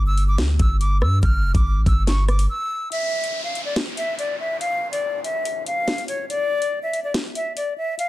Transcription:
Already playing: 808-style bass G1
0.07 flute E6
0.17 closed hi-hat
0.28 flute D6
0.38 808-style bass D2, snare, closed hi-hat
0.59 808-style bass G1, flute E6, kick, closed hi-hat
0.81 flute D6, closed hi-hat
1.02 808-style bass G2, flute E6, cross-stick
1.23 808-style bass G1, flute F6, kick, closed hi-hat
1.44 808-style bass F1
1.55 808-style bass G1, flute D6, kick, closed hi-hat
1.76 808-style bass A1
1.86 808-style bass G1, flute E6, kick, closed hi-hat
2.07 flute C#6, snare, closed hi-hat
2.28 flute D6, cross-stick, closed hi-hat
2.39 closed hi-hat
2.49 flute E6
2.92 flute E5, closed hi-hat, downlifter
3.24 closed hi-hat
3.44 flute F5
3.55 closed hi-hat
3.65 flute D5
3.76 snare, closed hi-hat
3.97 flute E5, closed hi-hat
4.19 flute D5, closed hi-hat
4.40 flute E5
4.60 flute F5, closed hi-hat
4.92 flute D5, closed hi-hat
5.24 flute E5, closed hi-hat
5.45 closed hi-hat
5.66 flute F5, closed hi-hat
5.88 snare, closed hi-hat
5.98 closed hi-hat
6.08 flute C#5, closed hi-hat
6.29 flute D5, closed hi-hat
6.62 closed hi-hat
6.83 flute E5
6.93 closed hi-hat
7.04 flute D5
7.14 snare, closed hi-hat
7.35 flute E5, closed hi-hat
7.57 flute D5, closed hi-hat
7.78 flute E5
7.99 flute F5, closed hi-hat

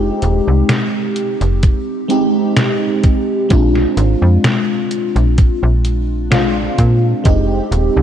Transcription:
Already playing: fm bass F1, fm electric piano G#3 C4 D#4 G4
0.22 fm bass D#1, closed hi-hat
0.48 fm bass C2
0.69 snare, closed hi-hat
1.16 closed hi-hat
1.41 fm bass F1, closed hi-hat
1.63 kick, closed hi-hat
2.08 fm electric piano G#3 C4 D#4 G4, closed hi-hat
2.57 snare, closed hi-hat
3.04 kick, closed hi-hat
3.49 fm bass A#1, fm electric piano G#3 C4 D4 F4, kick, closed hi-hat
3.75 snare
3.97 fm bass G#1, closed hi-hat
4.22 fm bass F2
4.44 snare, closed hi-hat
4.91 closed hi-hat
5.16 fm bass A#1, closed hi-hat
5.38 kick, closed hi-hat
5.63 fm bass A#1
5.85 closed hi-hat
6.31 fm electric piano G#3 C4 D4 F4, snare, closed hi-hat
6.78 fm bass A#2, kick, closed hi-hat
7.24 fm bass F1, fm electric piano G#3 C4 D#4 G4, kick, closed hi-hat
7.71 fm bass D#1, closed hi-hat
7.97 fm bass C2

